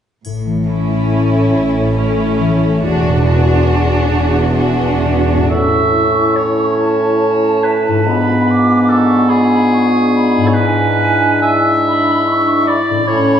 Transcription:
0.25 double bass section A1, harp A2, cello section A2, triangle
0.46 harp E3
0.68 viola section C#4, harp C#4, violin section E4 A4
0.90 harp E4
1.11 harp A4
1.33 harp C#5
1.54 double bass section A1, cello section A2, harp A4
1.76 harp C#5
1.96 viola section C#4, violin section E4 A4, harp A4
2.18 harp C#4
2.40 harp E3
2.62 harp C#4
2.81 double bass section E1, cello section E2, harp E2, viola section D4, violin section F#4 G#4
3.03 harp B2
3.23 viola section D4, harp D4, violin section F#4 G#4
3.45 harp F#4
3.67 harp G#4
3.87 harp D5
4.09 double bass section E1, cello section E2, harp G#4
4.33 harp D5
4.55 viola section D4, violin section F#4 G#4, harp G#4
4.79 harp D4
5.04 harp B2
5.29 harp D4
5.34 harp A2
5.38 harp C#4
5.43 harp E4
5.47 bassoon A2, clarinet C#4, french horn section C#4, harp A4, oboe E5, flute section C#6
5.52 french horn section E4
6.36 oboe C#5
6.81 flute section A5
7.64 oboe B4
7.88 harp G#2
7.92 harp D4
7.97 harp F4
8.01 harp B4
8.06 bassoon G#2, clarinet B3, french horn section D4 F4, flute section B5
8.51 flute section D6
8.89 oboe A4, flute section C#6
9.28 french horn section D4 F4, oboe G#4, flute section B5
9.72 flute section C#6
10.16 flute section B5
10.37 harp G#2
10.42 harp D4
10.47 harp E4, oboe C#5
10.51 harp B4, oboe B4
10.56 clarinet D4, french horn section D4 E4, flute section G#5
11.42 oboe E5
11.87 flute section B5
12.28 flute section C#6
12.68 oboe D5, flute section B5
12.90 harp A2
12.95 harp C#4
12.99 harp E4
13.04 harp A4
13.08 bassoon A2, french horn section C#4 E4, clarinet C#4, oboe C#5

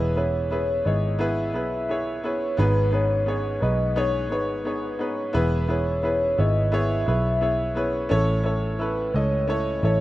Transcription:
Already playing: picked electric bass E1, upright piano E3 B3 E4 G#4 B4, soft synth lead B4
0.16 upright piano B3 E4 G#4 B4, soft synth lead C#5
0.51 upright piano B3 E4 G#4 B4
0.85 picked electric bass G#1, upright piano B3 E4 G#4 C#5, soft synth lead D#5
1.19 upright piano B3 E4 G#4 B4, soft synth lead E5
1.53 picked electric bass B1, upright piano B3 E4 G#4 B4, soft synth lead E5
1.89 upright piano B3 E4 G#4 C#5
2.23 upright piano B3 E4 G#4 B4, soft synth lead C#5
2.57 picked electric bass G#1, upright piano G#2 B3 D#4 G#4 B4, soft synth lead B4
2.92 upright piano B3 D#4 G#4 B4, soft synth lead C#5
3.26 upright piano B3 D#4 G#4 C#5
3.61 picked electric bass B1, upright piano B3 D#4 G#4 B4, soft synth lead D#5
3.96 upright piano B3 D#4 G#4 C#5, soft synth lead C#5
4.30 picked electric bass G#1, upright piano B3 D#4 G#4 C#5, soft synth lead B4
4.65 upright piano B3 D#4 G#4 C#5
4.99 upright piano B3 D#4 G#4 B4, soft synth lead C#5
5.33 picked electric bass E1, upright piano E3 B3 E4 G#4 B4, soft synth lead B4
5.68 upright piano B3 E4 G#4 B4, soft synth lead C#5
6.03 upright piano B3 E4 G#4 B4
6.38 picked electric bass G#1, upright piano B3 E4 G#4 C#5, soft synth lead D#5
6.72 upright piano B3 E4 G#4 C#5, soft synth lead E5
7.06 picked electric bass B1, upright piano B3 E4 G#4 B4, soft synth lead E5
7.41 upright piano B3 E4 G#4 C#5
7.75 upright piano B3 E4 G#4 B4, soft synth lead C#5
8.09 picked electric bass A1, upright piano A2 C#4 E4 A4 C#5
8.44 upright piano C#4 E4 A4 C#5
8.79 upright piano C#4 E4 A4 B4, soft synth lead B4
9.14 picked electric bass C#2, upright piano C#4 E4 A4 D#5, soft synth lead C#5
9.48 upright piano C#4 E4 A4 C#5
9.83 picked electric bass A1, upright piano C#4 E4 A4 C#5

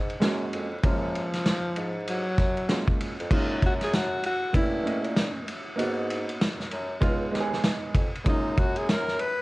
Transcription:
Already playing: bassoon G#2
0.10 ride
0.20 bassoon F#2, grand piano G#3 A#3 C#4 F#4, snare, hi-hat pedal, ride
0.53 bassoon F2, ride
0.84 bassoon F#2, alto saxophone F3, grand piano G#3 A#3 C#4 F4, kick, ride
1.15 ride
1.33 snare, ride
1.46 snare, hi-hat pedal, ride
1.76 bassoon G#2, ride
2.07 alto saxophone F#3, ride
2.38 bassoon F#2, kick, snare, ride
2.57 ride
2.69 grand piano G#3 A#3 C#4 F4, snare, hi-hat pedal, ride
2.88 kick
3.00 ride
3.20 bassoon F2, ride
3.30 bassoon F#2, grand piano G#3 A#3 C#4 F4, alto saxophone D#4, kick, crash
3.62 kick, ride
3.67 alto saxophone F#4
3.81 alto saxophone G#4, snare, ride
3.93 alto saxophone F#4, snare, hi-hat pedal, ride
4.23 alto saxophone F#4, ride
4.53 bassoon G2, grand piano A3 A#3 C#4 E4, alto saxophone E4, kick, ride
4.83 grand piano A3 A#3 C#4 D#5, ride
5.04 bassoon A#2, ride
5.16 snare, hi-hat pedal, ride
5.48 ride
5.76 bassoon G#2, grand piano A#3 B3 D#4 F#4, ride
6.10 ride
6.29 ride
6.41 snare, hi-hat pedal, ride
6.59 bassoon F#2, snare
6.71 bassoon F#2, ride
7.01 bassoon C#2, grand piano G#3 B3 D#4 F4, kick, ride
7.31 bassoon D#2, grand piano G#3 B3 D#4 G4, snare, ride
7.40 grand piano G#4
7.53 snare
7.64 snare, hi-hat pedal, ride
7.95 bassoon F2, kick, ride
8.15 ride
8.24 bassoon F#2, grand piano G#3 A#3 C#4 F4, kick, ride
8.29 alto saxophone D#4
8.57 alto saxophone F#4, kick, ride
8.76 alto saxophone G#4, ride
8.89 alto saxophone A#4, snare, hi-hat pedal, ride
9.08 snare
9.19 alto saxophone B4, ride

